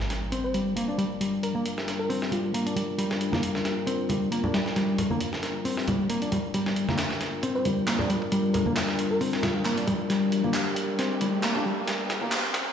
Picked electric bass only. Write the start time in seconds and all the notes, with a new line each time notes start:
0.32 C4
0.54 G3
0.76 A#3
0.88 D4
0.98 G3
1.21 G3
1.55 A#3
2.10 C4
2.31 G3
2.54 A#3
2.66 D4
2.76 G3
2.98 G3
3.32 A#3
3.87 C4
4.09 G3
4.32 A#3
4.44 D4
4.54 G3
4.76 G3
5.11 A#3
5.65 C4
5.88 G3
6.10 A#3
6.22 D4
6.32 G3
6.54 G3
6.89 A#3
7.43 C4
7.65 G3
7.87 A#3
8.00 D4
8.10 G3
8.32 G3
8.66 A#3
9.21 C4
9.43 G3
9.65 A#3
9.77 D4
9.87 G3
10.10 G3
10.44 A#3
10.99 C4
11.21 G3
11.44 A#3
11.56 D4
11.66 G3
11.88 G3
12.22 A#3